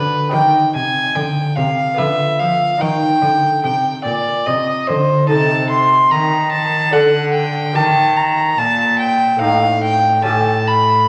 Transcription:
0.00 0.29 D3 soft
0.00 0.30 D3 soft
0.00 0.27 B3 soft
0.00 0.27 F4 soft
0.00 0.28 G4 soft
0.00 0.32 B4 medium
0.29 1.93 C4 soft
0.29 1.93 D#4 soft
0.29 1.94 G4 soft
0.33 0.71 D#3 medium
0.33 0.70 D#3 soft
0.33 0.73 G5 medium
0.74 1.11 C3 soft
0.74 1.13 C3 medium
0.74 1.17 G#5 medium
1.15 1.54 D3 medium
1.15 1.53 D3 soft
1.15 1.57 G5 medium
1.57 1.95 C3 medium
1.57 1.94 C3 soft
1.57 1.99 F5 medium
1.94 2.76 B3 soft
1.94 2.77 F4 soft
1.94 2.78 B4 soft
1.94 2.41 E5 medium
1.99 2.37 D3 medium
1.99 2.36 D3 soft
2.39 2.77 F3 soft
2.39 2.79 F3 medium
2.39 2.82 F5 medium
2.78 3.18 D#3 soft
2.78 3.20 D#3 medium
2.78 5.24 D#4 soft
2.78 5.25 C5 soft
2.78 3.63 G5 medium
3.22 3.61 D3 medium
3.22 3.60 D3 soft
3.64 4.02 C3 medium
3.64 4.01 C3 soft
3.64 4.04 G5 medium
4.04 4.43 A#2 medium
4.04 4.43 A#2 soft
4.04 4.47 D5 medium
4.46 4.84 C3 soft
4.46 4.85 C3 medium
4.46 4.88 D#5 medium
4.87 5.26 D3 soft
4.87 5.27 D3 medium
4.87 5.28 C5 medium
5.27 6.09 C3 soft
5.27 6.09 C3 medium
5.27 6.89 D#4 soft
5.27 6.90 A4 soft
5.27 5.69 A5 medium
5.70 6.13 C6 medium
6.11 6.90 D#3 soft
6.11 6.96 D#3 medium
6.11 6.51 A#5 medium
6.52 6.94 A5 medium
6.91 7.72 D3 soft
6.91 7.76 D3 medium
6.91 7.73 D4 soft
6.91 7.73 A4 soft
6.91 7.33 F#5 medium
7.33 7.77 G5 medium
7.73 8.55 D#3 soft
7.73 8.57 D#3 medium
7.73 9.36 A#3 soft
7.73 9.37 G4 soft
7.73 8.18 A5 medium
8.17 8.59 A#5 medium
8.58 9.38 A#2 medium
8.58 9.40 A#2 medium
8.58 8.98 A5 medium
8.99 9.40 G5 medium
9.37 10.20 A3 soft
9.37 10.21 C4 soft
9.37 10.22 D#4 soft
9.41 10.22 A2 medium
9.41 10.24 A2 medium
9.41 9.83 F5 medium
9.83 10.24 G5 medium
10.21 11.06 A3 soft
10.21 11.07 C#4 soft
10.21 11.08 G4 soft
10.21 10.69 A5 medium
10.26 11.07 A2 soft
10.26 11.08 A2 medium
10.67 11.08 B5 medium

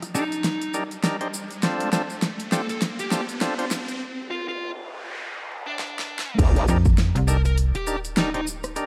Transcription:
0.00 cross-stick soft
0.00 closed hi-hat medium
0.00 riser medium
0.00 cabasa soft
0.15 0.24 D4 medium
0.15 0.24 D#4 medium
0.15 0.74 D#4 medium
0.15 0.24 G4 medium
0.15 0.24 A4 medium
0.15 cabasa loud
0.32 closed hi-hat soft
0.32 cabasa soft
0.44 snare medium
0.44 closed hi-hat medium
0.44 cabasa soft
0.62 closed hi-hat medium
0.62 cabasa soft
0.74 0.84 D4 medium
0.74 0.84 D#4 medium
0.74 0.84 G4 medium
0.74 0.84 A#4 medium
0.74 cabasa medium
0.91 closed hi-hat soft
0.91 cabasa soft
1.03 1.17 D4 medium
1.03 1.17 D#4 medium
1.03 1.17 G4 medium
1.03 1.17 A#4 medium
1.03 snare medium
1.03 closed hi-hat medium
1.03 cabasa medium
1.21 1.28 D4 medium
1.21 1.28 D#4 medium
1.21 1.28 G4 medium
1.21 1.28 C5 medium
1.21 closed hi-hat medium
1.34 cabasa loud
1.50 closed hi-hat soft
1.50 cabasa soft
1.62 1.90 C4 medium
1.62 1.90 D4 medium
1.62 1.90 F4 medium
1.62 1.90 A4 medium
1.62 snare medium
1.62 closed hi-hat medium
1.62 cabasa medium
1.80 closed hi-hat medium
1.92 2.02 C4 loud
1.92 2.02 D4 medium
1.92 2.02 F4 medium
1.92 2.02 A4 loud
1.92 snare medium
1.92 cabasa medium
2.10 cabasa soft
2.22 snare medium
2.22 closed hi-hat medium
2.22 cabasa medium
2.40 closed hi-hat medium
2.40 cabasa soft
2.52 2.62 C4 medium
2.52 2.62 D4 medium
2.52 2.62 F4 medium
2.52 2.62 G4 medium
2.52 2.64 A4 medium
2.52 snare medium
2.52 cabasa medium
2.69 2.78 A4 medium
2.69 closed hi-hat soft
2.69 cabasa soft
2.81 snare medium
2.81 closed hi-hat medium
2.81 cabasa medium
2.99 3.20 G4 medium
2.99 closed hi-hat medium
2.99 cabasa soft
3.11 3.21 C4 medium
3.11 3.21 D4 medium
3.11 3.21 F4 medium
3.11 3.21 A4 medium
3.11 snare medium
3.11 cabasa loud
3.29 closed hi-hat soft
3.29 cabasa soft
3.41 3.54 C4 medium
3.41 3.55 D4 medium
3.41 3.54 F4 medium
3.41 3.54 A4 loud
3.41 snare medium
3.41 closed hi-hat medium
3.41 cabasa medium
3.58 3.66 C4 medium
3.58 3.66 D4 medium
3.58 3.66 F4 medium
3.58 3.65 C5 medium
3.58 closed hi-hat medium
3.71 snare medium
3.71 cabasa loud
3.88 closed hi-hat soft
3.88 cabasa soft
4.01 noise sweep medium
4.31 4.44 F4 medium
4.48 4.68 F4 medium
5.67 6.39 D4 medium
5.79 snare medium
5.99 snare medium
6.19 snare loud
6.38 6.66 C2 loud
6.38 6.65 D4 medium
6.38 6.65 D#4 medium
6.38 6.65 G4 medium
6.38 6.65 A#4 medium
6.38 kick loud
6.38 closed hi-hat medium
6.38 crash loud
6.38 sub drop medium
6.38 cabasa soft
6.45 closed hi-hat soft
6.49 closed hi-hat soft
6.56 closed hi-hat medium
6.68 7.13 F2 loud
6.68 6.78 D4 loud
6.68 6.78 D#4 medium
6.68 6.78 G4 medium
6.68 6.78 A#4 loud
6.68 cabasa medium
6.85 kick loud
6.85 cabasa soft
6.98 snare loud
6.98 closed hi-hat medium
6.98 cabasa soft
7.15 7.72 C2 loud
7.15 closed hi-hat medium
7.28 7.37 D4 medium
7.28 7.37 D#4 medium
7.28 7.37 G4 medium
7.28 7.37 A4 medium
7.28 7.39 A#4 medium
7.28 cabasa loud
7.45 7.53 A#4 medium
7.45 closed hi-hat soft
7.45 cabasa soft
7.58 closed hi-hat medium
7.58 cabasa soft
7.75 7.95 G4 medium
7.75 closed hi-hat medium
7.87 7.97 D4 medium
7.87 7.97 D#4 medium
7.87 7.97 G4 medium
7.87 7.97 A#4 medium
7.87 cabasa medium
8.05 closed hi-hat soft
8.05 cabasa medium
8.17 8.30 D4 medium
8.17 8.30 D#4 medium
8.17 8.28 D#4 medium
8.17 8.30 G4 medium
8.17 8.30 A#4 loud
8.17 snare loud
8.17 closed hi-hat medium
8.17 cabasa soft
8.34 8.41 D4 medium
8.34 8.41 D#4 medium
8.34 8.42 D#4 medium
8.34 8.41 G4 medium
8.34 8.41 C5 medium
8.34 closed hi-hat medium
8.47 cabasa loud
8.64 cross-stick medium
8.64 closed hi-hat soft
8.64 cabasa medium
8.76 8.86 D4 medium
8.76 8.86 D#4 medium
8.76 8.86 G4 medium
8.76 8.86 A#4 medium
8.76 closed hi-hat medium
8.76 cabasa soft

